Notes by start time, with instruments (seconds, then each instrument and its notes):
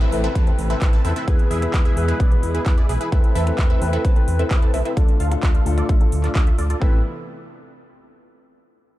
Already playing: string section C3 E3 A3 E4 B4, downlifter
0.01 supersaw synth C4 E4 A4 B4 E5, closed hi-hat
0.12 analog synth bass A1, grand piano C4 E4 A4 B4, open hi-hat
0.24 supersaw synth C4 E4 A4 B4 E5, finger snap, closed hi-hat
0.35 analog synth bass E2, supersaw synth C4 E4 A4 B4 A5, kick, closed hi-hat
0.46 grand piano C4 E4 A4 B4, closed hi-hat
0.58 analog synth bass A1, open hi-hat
0.70 supersaw synth C4 E4 A4 B4 E5, closed hi-hat
0.81 analog synth bass A1, grand piano C4 E4 A4 B4, supersaw synth C4 E4 A4 B4 E5, kick, clap, closed hi-hat
0.93 supersaw synth C4 E4 A4 B4 A5, closed hi-hat
1.04 analog synth bass E2, supersaw synth C4 E4 A4 B4 E5, open hi-hat
1.16 supersaw synth C4 E4 A4 B4 E5, closed hi-hat
1.27 analog synth bass E2, string section B2 G#3 G#4, grand piano B3 E4 G#4 B4, supersaw synth E4 G#4 B4, kick, closed hi-hat
1.39 closed hi-hat
1.51 analog synth bass E2, supersaw synth E4 G#4 E5, open hi-hat
1.62 grand piano B3 E4 G#4 B4, finger snap, closed hi-hat
1.74 analog synth bass E2, kick, clap, closed hi-hat
1.85 supersaw synth E4 G#4 E5, closed hi-hat
1.96 analog synth bass E2, grand piano B3 E4 G#4 B4, open hi-hat
2.08 supersaw synth E4 G#4 B4, finger snap, closed hi-hat
2.20 analog synth bass B1, supersaw synth D5, kick, closed hi-hat
2.31 grand piano B3 E4 G#4 B4, closed hi-hat
2.43 analog synth bass E2, open hi-hat
2.54 supersaw synth E4 G#4 B4, closed hi-hat
2.65 analog synth bass E2, grand piano B3 E4 G#4 B4, supersaw synth E4 G#4 B4, kick, clap, closed hi-hat
2.78 supersaw synth E4 G#4 D5, closed hi-hat
2.89 analog synth bass B1, supersaw synth E4 G#4 B4, open hi-hat
3.01 supersaw synth E4 G#4 B4, closed hi-hat
3.12 analog synth bass E2, string section C3 A3 B4, grand piano C4 E4 A4 B4, supersaw synth C4 E4 A4 B4 E5, kick, closed hi-hat
3.24 closed hi-hat
3.35 analog synth bass E2, supersaw synth C4 E4 A4 B4 E5, open hi-hat
3.46 grand piano C4 E4 A4 B4, finger snap, closed hi-hat
3.58 analog synth bass E2, kick, clap, closed hi-hat
3.70 supersaw synth C4 E4 A4 B4 E5, closed hi-hat
3.81 analog synth bass E2, grand piano C4 E4 A4 B4, open hi-hat
3.93 supersaw synth C4 E4 A4 B4 E5, finger snap, closed hi-hat
4.05 analog synth bass B1, supersaw synth B4, kick, closed hi-hat
4.16 grand piano C4 E4 A4 B4, closed hi-hat
4.28 analog synth bass E2, open hi-hat
4.39 supersaw synth C4 E4 A4 B4 E5, closed hi-hat
4.50 analog synth bass E2, grand piano C4 E4 B4, supersaw synth C4 E4 A4 B4 E5, kick, clap, closed hi-hat
4.62 supersaw synth C4 E4 A4 B4 A5, closed hi-hat
4.74 analog synth bass B1, supersaw synth C4 E4 A4 B4 E5, open hi-hat
4.85 supersaw synth C4 E4 A4 B4 E5, closed hi-hat
4.96 analog synth bass D2, string section A2 D3 F3 D4 F4, grand piano A3 D4 F4 A4, supersaw synth A4 D5, kick, closed hi-hat
5.09 closed hi-hat
5.20 analog synth bass D2, supersaw synth F4 A4 F5, open hi-hat
5.31 grand piano A3 D4 F4 A4, finger snap, closed hi-hat
5.43 analog synth bass D2, kick, clap, closed hi-hat
5.55 supersaw synth F4 A4 F5, closed hi-hat
5.65 analog synth bass D2, grand piano A3 D4 F4 A4, open hi-hat
5.78 supersaw synth F4 A4 D5, finger snap, closed hi-hat
5.89 analog synth bass A1, supersaw synth F4, kick, closed hi-hat
6.00 grand piano A3 D4 F4 A4, closed hi-hat
6.12 analog synth bass D2, open hi-hat
6.24 supersaw synth F4 A4 D5, clap, closed hi-hat
6.35 analog synth bass D2, grand piano A3 D4 A4, supersaw synth F4 D5, kick, clap, closed hi-hat
6.47 supersaw synth F4 A4 E5, closed hi-hat
6.58 analog synth bass D2, supersaw synth F4 A4 D5, open hi-hat
6.70 supersaw synth F4 A4 D5, closed hi-hat
6.80 analog synth bass A1, string section C3 E3 A3 B3 E4, grand piano C4 E4 A4 B4, supersaw synth C4 E4 A4 B4 E5, kick